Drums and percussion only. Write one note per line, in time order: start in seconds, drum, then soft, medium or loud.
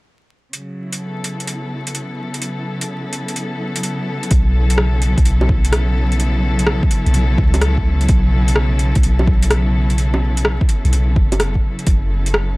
0.53 closed hi-hat medium
0.93 closed hi-hat medium
1.24 closed hi-hat medium
1.40 closed hi-hat soft
1.47 closed hi-hat soft
1.87 closed hi-hat medium
1.95 closed hi-hat medium
2.34 closed hi-hat soft
2.42 closed hi-hat medium
2.81 closed hi-hat medium
3.13 closed hi-hat medium
3.28 closed hi-hat soft
3.36 closed hi-hat medium
3.76 closed hi-hat medium
3.83 closed hi-hat medium
4.23 closed hi-hat soft
4.31 kick loud
4.31 closed hi-hat medium
4.70 closed hi-hat medium
4.78 cross-stick loud
5.02 closed hi-hat medium
5.18 kick loud
5.18 closed hi-hat soft
5.25 closed hi-hat medium
5.41 low bongo soft
5.49 kick loud
5.65 closed hi-hat medium
5.72 cross-stick loud
5.72 closed hi-hat medium
6.12 closed hi-hat soft
6.20 closed hi-hat medium
6.59 closed hi-hat medium
6.67 cross-stick loud
6.83 kick loud
6.91 closed hi-hat medium
7.06 closed hi-hat soft
7.14 closed hi-hat medium
7.38 kick loud
7.54 closed hi-hat medium
7.54 low bongo soft
7.61 cross-stick loud
7.61 closed hi-hat medium
7.78 kick medium
8.01 closed hi-hat soft
8.09 kick loud
8.09 closed hi-hat medium
8.48 closed hi-hat medium
8.56 cross-stick loud
8.79 closed hi-hat medium
8.95 kick loud
8.95 closed hi-hat soft
9.03 closed hi-hat medium
9.19 low bongo soft
9.27 kick loud
9.43 closed hi-hat medium
9.51 cross-stick loud
9.51 closed hi-hat medium
9.90 closed hi-hat soft
9.98 closed hi-hat soft
10.14 low bongo soft
10.37 closed hi-hat medium
10.45 cross-stick loud
10.61 kick loud
10.69 closed hi-hat medium
10.85 closed hi-hat soft
10.93 closed hi-hat medium
11.16 kick loud
11.32 closed hi-hat medium
11.32 low bongo soft
11.40 cross-stick loud
11.40 closed hi-hat medium
11.55 kick medium
11.79 closed hi-hat soft
11.87 kick loud
11.87 closed hi-hat soft
12.26 closed hi-hat medium
12.34 cross-stick loud